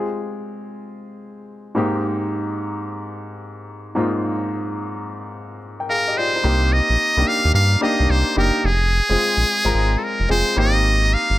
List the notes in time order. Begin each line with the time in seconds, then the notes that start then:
Already playing: G#3 C4 F4 G#4
1.75 G#2 A#3 C4 D#4 G4
3.95 G#2 A#3 C4 D#4 F4
5.80 A#4 G5
5.90 G#4 A#4 F5
6.08 G4 D#5
6.17 F4 C5 D5
6.35 D#4 C5
6.44 C2 A#3 C4 D#4 G4
6.73 D#5
6.90 A#1
7.17 C2 A#3 D4 D#4 G4
7.28 F5
7.45 D#2
7.54 G2 F5
7.81 A#3 D4 D#4 G4 D#5
8.00 C2
8.10 C2 C5
8.36 F#1 A#3 D4 D#4 G4 A#4
8.64 F1 G#4
9.09 F1 G#3 C4 F4 G#4
9.37 A#1
9.65 G#1 G#3 C4 F4 A#4
9.74 G#1
9.99 A4
10.04 A#4
10.20 F1
10.29 F1 G#3 C4 F4 G#4 C5
10.56 G#1 A#3 C4 D#4 G4 D#5
11.14 F5
11.30 G1